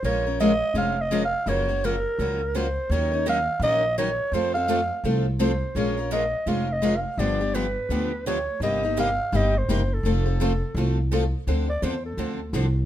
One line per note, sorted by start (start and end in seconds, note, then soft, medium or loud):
0.03 0.61 A#1 medium
0.03 0.25 F3 medium
0.03 0.25 G#3 medium
0.03 0.25 C#4 medium
0.03 0.25 F4 medium
0.03 0.25 A#4 medium
0.03 0.38 C#5 loud
0.27 0.39 C#4 soft
0.27 0.40 F4 soft
0.27 0.40 A#4 medium
0.40 0.51 F3 medium
0.40 0.51 G#3 medium
0.40 0.51 C#4 medium
0.40 0.51 F4 medium
0.40 0.52 A#4 medium
0.40 0.73 D#5 loud
0.74 1.32 F1 medium
0.74 0.96 F3 medium
0.74 0.96 G#3 medium
0.74 0.96 C#4 medium
0.74 0.96 F4 medium
0.74 0.96 A#4 medium
0.74 1.03 F5 loud
1.01 1.24 D#5 loud
1.11 1.22 F3 medium
1.11 1.22 G#3 medium
1.11 1.22 C#4 medium
1.11 1.22 F4 medium
1.11 1.23 A#4 medium
1.25 1.50 F5 loud
1.46 2.04 F#1 medium
1.46 1.67 C#3 medium
1.46 1.67 F3 medium
1.46 1.68 F#3 medium
1.46 1.68 A#3 medium
1.46 1.68 C#4 medium
1.46 1.68 F4 medium
1.46 1.67 F#4 medium
1.46 1.68 A#4 medium
1.46 1.87 C#5 loud
1.68 1.83 A#3 soft
1.68 1.83 C#4 soft
1.68 1.82 F#4 medium
1.84 1.94 C#3 medium
1.84 1.94 F3 medium
1.84 1.94 F#3 medium
1.84 1.94 A#3 medium
1.84 1.95 C#4 medium
1.84 1.95 F4 loud
1.84 1.95 F#4 medium
1.84 1.95 A#4 loud
1.84 2.57 A#4 loud
2.19 2.76 C#2 medium
2.19 2.40 C#3 medium
2.19 2.40 F3 medium
2.19 2.39 F#3 medium
2.19 2.40 A#3 medium
2.19 2.40 C#4 medium
2.19 2.40 F4 medium
2.19 2.41 F#4 medium
2.19 2.40 A#4 medium
2.54 2.66 C#3 medium
2.54 2.66 F3 medium
2.54 2.65 F#3 medium
2.54 2.66 A#3 medium
2.54 2.66 C#4 medium
2.54 2.66 F4 loud
2.54 2.66 F#4 loud
2.54 2.66 A#4 medium
2.54 2.93 C5 medium
2.90 3.47 D#2 medium
2.90 3.12 D#3 medium
2.90 3.12 F#3 medium
2.90 3.12 C#4 medium
2.90 3.12 D#4 medium
2.90 3.10 A#4 medium
2.90 3.26 C#5 loud
3.12 3.26 C#4 soft
3.12 3.26 D#4 medium
3.12 3.25 A#4 soft
3.27 3.37 D#3 medium
3.27 3.37 F#3 medium
3.27 3.38 C#4 medium
3.27 3.38 D#4 medium
3.27 3.38 A#4 medium
3.27 3.61 F5 loud
3.60 4.17 A#1 medium
3.60 3.83 D#3 medium
3.60 3.83 F#3 medium
3.60 3.83 C#4 medium
3.60 3.83 D#4 medium
3.60 3.96 D#5 loud
3.64 3.83 A#4 medium
3.98 4.08 D#3 medium
3.98 4.08 F#3 medium
3.98 4.09 C#4 loud
3.98 4.09 D#4 medium
3.98 4.09 A#4 medium
3.98 4.35 C#5 medium
4.32 4.89 F2 medium
4.32 4.53 F3 medium
4.32 4.54 A3 medium
4.32 4.54 C4 medium
4.32 4.54 F4 medium
4.32 4.54 A4 medium
4.32 4.53 C5 loud
4.54 4.67 C4 soft
4.54 4.67 F4 soft
4.54 4.68 A4 medium
4.54 5.11 F5 loud
4.68 4.79 F3 medium
4.68 4.79 A3 medium
4.68 4.79 C4 medium
4.68 4.79 F4 medium
4.68 4.80 A4 medium
5.04 5.61 C2 medium
5.04 5.25 F3 medium
5.04 5.25 A3 medium
5.04 5.25 C4 medium
5.04 5.25 F4 medium
5.04 5.25 A4 medium
5.39 5.51 F3 medium
5.39 5.50 A3 medium
5.39 5.51 C4 medium
5.39 5.51 F4 medium
5.39 5.51 A4 medium
5.39 5.78 C5 medium
5.75 6.32 A#1 medium
5.75 5.96 F3 medium
5.75 5.97 G#3 medium
5.75 5.97 C#4 medium
5.75 5.97 F4 medium
5.75 5.96 A#4 medium
5.75 6.12 C#5 medium
5.97 6.11 C#4 soft
5.97 6.11 F4 medium
5.97 6.11 A#4 medium
6.11 6.22 F3 medium
6.11 6.23 G#3 medium
6.11 6.23 C#4 medium
6.11 6.23 F4 medium
6.11 6.23 A#4 medium
6.11 6.50 D#5 loud
6.46 7.04 F1 medium
6.46 6.67 F3 medium
6.46 6.68 G#3 medium
6.46 6.68 C#4 medium
6.46 6.68 F4 medium
6.46 6.68 A#4 medium
6.46 6.74 F5 medium
6.73 6.98 D#5 loud
6.82 6.93 F3 medium
6.82 6.93 G#3 medium
6.82 6.94 C#4 medium
6.82 6.94 F4 loud
6.82 6.94 A#4 medium
6.96 7.21 F5 medium
7.17 7.75 G1 medium
7.17 7.39 D3 medium
7.17 7.39 F3 medium
7.17 7.39 B3 medium
7.17 7.40 D4 medium
7.17 7.39 G4 medium
7.17 7.56 D5 loud
7.41 7.54 B3 soft
7.41 7.54 D4 soft
7.41 7.54 G4 medium
7.55 7.65 D3 medium
7.55 7.65 F3 medium
7.55 7.65 B3 medium
7.55 7.65 D4 medium
7.55 7.66 G4 medium
7.55 8.26 B4 medium
7.89 8.47 D2 medium
7.89 8.10 D3 medium
7.89 8.11 F3 medium
7.89 8.11 B3 medium
7.89 8.11 D4 medium
7.89 8.11 G4 medium
8.26 8.37 D3 medium
8.26 8.37 F3 medium
8.26 8.37 B3 medium
8.26 8.38 D4 medium
8.26 8.38 G4 medium
8.26 8.60 C#5 medium
8.60 9.18 G1 medium
8.60 8.82 C3 medium
8.60 8.83 G3 medium
8.60 8.83 A#3 medium
8.60 8.83 D#4 medium
8.60 8.82 G4 medium
8.60 8.95 D#5 medium
8.83 8.97 A#3 soft
8.83 8.97 D#4 soft
8.83 8.97 G4 medium
8.97 9.08 C3 medium
8.97 9.09 G3 medium
8.97 9.09 A#3 medium
8.97 9.09 D#4 medium
8.97 9.09 G4 medium
8.97 9.37 F5 loud
9.32 9.63 G1 medium
9.32 9.53 C3 medium
9.32 9.53 G3 medium
9.32 9.53 A#3 medium
9.32 9.53 D#4 medium
9.32 9.54 G4 medium
9.32 9.60 D#5 loud
9.58 9.95 C5 loud
9.69 9.99 F#1 medium
9.69 9.80 C3 medium
9.69 9.80 G3 medium
9.69 9.80 A#3 loud
9.69 9.80 D#4 medium
9.69 9.80 G4 loud
9.94 11.13 A4 medium
10.03 10.61 F1 medium
10.03 10.25 F3 medium
10.03 10.25 A3 medium
10.03 10.25 C4 medium
10.03 10.25 F4 medium
10.03 10.24 A4 medium
10.26 10.40 C4 soft
10.26 10.40 F4 soft
10.26 10.39 A4 medium
10.40 10.51 F3 medium
10.40 10.51 A3 medium
10.40 10.51 C4 medium
10.40 10.51 F4 medium
10.40 10.52 A4 medium
10.75 11.32 C2 medium
10.75 10.97 F3 medium
10.75 10.97 A3 medium
10.75 10.97 C4 medium
10.75 10.97 F4 medium
10.75 10.97 A4 medium
11.12 11.22 F3 medium
11.12 11.23 A3 medium
11.12 11.23 C4 medium
11.12 11.23 F4 medium
11.12 11.23 A4 medium
11.47 11.82 D2 medium
11.47 11.68 D3 medium
11.47 11.68 F3 medium
11.47 11.68 C4 medium
11.47 11.68 D4 medium
11.47 11.68 A4 medium
11.70 11.85 D5 medium
11.82 12.17 E2 medium
11.82 11.94 D3 medium
11.82 11.94 F3 medium
11.82 11.94 C4 medium
11.82 11.94 D4 medium
11.82 11.94 A4 medium
11.82 12.05 C5 medium
12.06 12.51 A4 medium
12.17 12.53 D2 medium
12.17 12.39 D3 medium
12.17 12.39 F3 medium
12.17 12.39 C4 medium
12.17 12.39 D4 medium
12.17 12.39 A4 medium
12.53 12.86 C2 medium
12.53 12.65 D3 medium
12.53 12.65 F3 medium
12.53 12.65 C4 medium
12.53 12.65 D4 medium
12.53 12.65 A4 medium